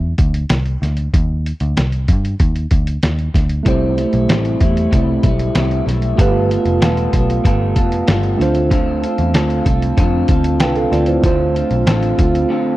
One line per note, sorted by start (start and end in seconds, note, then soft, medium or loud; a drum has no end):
0.00 0.12 E2 medium
0.18 0.44 D2 medium
0.18 kick medium
0.18 closed hi-hat medium
0.34 closed hi-hat medium
0.49 0.76 C2 medium
0.49 snare loud
0.49 closed hi-hat medium
0.66 closed hi-hat soft
0.82 1.07 D2 medium
0.82 snare soft
0.82 closed hi-hat medium
0.97 closed hi-hat soft
1.14 1.51 D#2 loud
1.14 kick loud
1.14 closed hi-hat medium
1.46 closed hi-hat medium
1.60 1.74 D2 medium
1.60 closed hi-hat soft
1.77 2.10 C2 medium
1.77 snare medium
1.77 closed hi-hat medium
1.92 closed hi-hat soft
2.08 2.34 G2 medium
2.08 kick medium
2.08 closed hi-hat medium
2.25 closed hi-hat soft
2.40 2.65 D#2 medium
2.40 kick medium
2.40 closed hi-hat medium
2.56 closed hi-hat soft
2.71 2.96 D2 medium
2.71 kick medium
2.71 closed hi-hat medium
2.87 closed hi-hat medium
3.03 3.28 D#2 medium
3.03 snare loud
3.03 closed hi-hat medium
3.19 closed hi-hat soft
3.34 3.60 D2 medium
3.34 kick medium
3.34 snare soft
3.34 closed hi-hat medium
3.50 closed hi-hat soft
3.63 4.04 C2 medium
3.63 3.97 C3 medium
3.63 3.98 G3 medium
3.63 6.13 A3 medium
3.63 3.98 A3 medium
3.63 6.14 E4 medium
3.63 6.15 G4 medium
3.63 kick loud
3.63 closed hi-hat medium
3.68 3.96 E4 medium
3.68 6.16 C5 medium
3.97 4.29 G3 soft
3.97 4.29 A3 soft
3.97 4.29 E4 soft
3.97 closed hi-hat medium
4.13 4.26 B1 medium
4.13 closed hi-hat soft
4.29 4.54 A1 medium
4.29 4.61 C3 medium
4.29 4.61 G3 medium
4.29 4.61 A3 medium
4.29 4.59 E4 medium
4.29 snare loud
4.29 closed hi-hat medium
4.45 closed hi-hat soft
4.61 4.86 E2 medium
4.61 4.91 G3 soft
4.61 4.92 A3 soft
4.61 4.92 E4 soft
4.61 kick medium
4.61 closed hi-hat medium
4.77 closed hi-hat soft
4.91 5.18 C2 medium
4.91 5.23 C3 medium
4.91 5.24 G3 medium
4.91 5.23 A3 medium
4.91 5.22 E4 medium
4.91 kick medium
4.91 closed hi-hat medium
5.23 5.49 B1 medium
5.23 5.55 G3 soft
5.23 5.55 A3 medium
5.23 5.55 E4 medium
5.23 kick medium
5.23 closed hi-hat medium
5.39 closed hi-hat soft
5.55 5.81 C2 medium
5.55 5.87 C3 medium
5.55 5.87 G3 medium
5.55 5.86 A3 loud
5.55 5.85 E4 medium
5.55 snare loud
5.55 closed hi-hat medium
5.71 closed hi-hat soft
5.86 6.12 B1 medium
5.86 6.16 G3 soft
5.86 6.18 A3 medium
5.86 6.18 E4 medium
5.86 snare soft
5.86 closed hi-hat medium
6.02 closed hi-hat soft
6.16 6.57 G1 loud
6.16 6.50 G3 medium
6.16 8.34 A3 medium
6.16 6.50 B3 medium
6.16 8.35 F4 medium
6.16 6.49 F4 medium
6.16 8.36 G4 medium
6.16 6.48 A4 medium
6.16 kick loud
6.16 closed hi-hat medium
6.21 8.37 B4 medium
6.49 6.81 B3 soft
6.49 6.81 F4 soft
6.49 6.81 A4 soft
6.49 closed hi-hat medium
6.65 6.78 F1 medium
6.65 closed hi-hat soft
6.81 7.07 E1 medium
6.81 7.13 G3 medium
6.81 7.14 B3 medium
6.81 7.12 F4 medium
6.81 7.11 A4 medium
6.81 snare medium
6.81 closed hi-hat medium
6.97 closed hi-hat soft
7.12 7.39 B1 medium
7.12 7.44 B3 soft
7.12 7.45 F4 soft
7.12 7.44 A4 soft
7.12 kick medium
7.12 closed hi-hat medium
7.30 closed hi-hat soft
7.44 7.76 G1 medium
7.44 7.76 G3 medium
7.44 7.77 B3 medium
7.44 7.76 F4 medium
7.44 7.74 A4 medium
7.44 kick medium
7.44 closed hi-hat medium
7.76 8.02 F1 medium
7.76 8.07 B3 soft
7.76 8.08 F4 medium
7.76 8.08 A4 soft
7.76 kick medium
7.76 closed hi-hat medium
7.92 closed hi-hat soft
8.07 8.34 G1 medium
8.07 8.39 G3 medium
8.07 8.40 B3 medium
8.07 8.39 F4 medium
8.07 8.37 A4 medium
8.07 snare loud
8.07 closed hi-hat medium
8.23 closed hi-hat soft
8.37 9.03 D2 medium
8.37 10.56 A3 medium
8.37 10.56 D4 medium
8.37 8.71 F4 soft
8.37 10.57 F4 medium
8.37 8.71 A4 medium
8.37 snare soft
8.41 8.70 C4 soft
8.41 10.58 C5 medium
8.41 closed hi-hat medium
8.55 closed hi-hat soft
8.71 9.03 D3 medium
8.71 9.03 C4 medium
8.71 9.02 F4 medium
8.71 9.01 A4 medium
8.71 kick loud
8.71 closed hi-hat medium
9.02 9.33 C4 soft
9.02 9.34 F4 soft
9.02 9.34 A4 soft
9.02 closed hi-hat medium
9.18 9.35 E2 medium
9.18 closed hi-hat soft
9.34 9.60 D2 medium
9.34 9.66 D3 medium
9.34 9.66 C4 medium
9.34 9.65 F4 medium
9.34 9.64 A4 medium
9.34 snare medium
9.34 closed hi-hat medium
9.50 closed hi-hat soft
9.65 9.91 C2 medium
9.65 9.97 C4 soft
9.65 9.98 F4 soft
9.65 9.97 A4 soft
9.65 kick medium
9.65 closed hi-hat medium
9.82 closed hi-hat soft
9.97 10.23 F2 medium
9.97 10.29 D3 medium
9.97 10.30 C4 medium
9.97 10.29 F4 medium
9.97 10.28 A4 medium
9.97 kick medium
9.97 closed hi-hat medium
10.28 10.61 D2 medium
10.28 10.60 C4 soft
10.28 10.61 F4 soft
10.28 10.61 A4 soft
10.28 kick medium
10.28 closed hi-hat medium
10.44 closed hi-hat medium
10.60 10.86 C2 medium
10.60 10.92 D3 medium
10.60 10.93 C4 medium
10.60 10.92 F4 medium
10.60 10.90 A4 medium
10.60 10.76 B4 soft
10.60 10.76 G5 medium
10.60 snare loud
10.60 closed hi-hat medium
10.76 10.92 A4 medium
10.76 10.92 F5 medium
10.76 closed hi-hat soft
10.92 11.18 D2 medium
10.92 11.23 C4 soft
10.92 11.08 F4 medium
10.92 11.24 F4 medium
10.92 11.24 A4 medium
10.92 11.07 D5 medium
10.92 snare soft
10.92 closed hi-hat medium
11.06 11.38 E4 soft
11.06 11.25 C5 medium
11.06 closed hi-hat soft
11.22 11.62 D2 loud
11.22 11.55 D3 medium
11.22 12.77 A3 medium
11.22 11.56 C4 medium
11.22 12.77 D4 medium
11.22 11.55 F4 medium
11.22 12.77 F4 medium
11.22 11.53 A4 medium
11.22 kick loud
11.22 closed hi-hat medium
11.26 12.77 C5 medium
11.55 11.86 C4 soft
11.55 11.87 F4 soft
11.55 11.87 A4 medium
11.55 closed hi-hat medium
11.71 11.84 B1 medium
11.71 closed hi-hat soft
11.86 12.12 A1 medium
11.86 12.18 D3 medium
11.86 12.19 C4 medium
11.86 12.18 F4 medium
11.86 12.16 A4 medium
11.86 snare medium
11.86 closed hi-hat medium
12.03 closed hi-hat soft
12.18 12.44 D2 medium
12.18 12.49 C4 soft
12.18 12.50 F4 soft
12.18 12.50 A4 soft
12.18 kick medium
12.18 closed hi-hat medium
12.35 closed hi-hat soft
12.49 12.77 D3 medium
12.49 12.77 C4 medium
12.49 12.77 F4 medium
12.49 12.77 A4 medium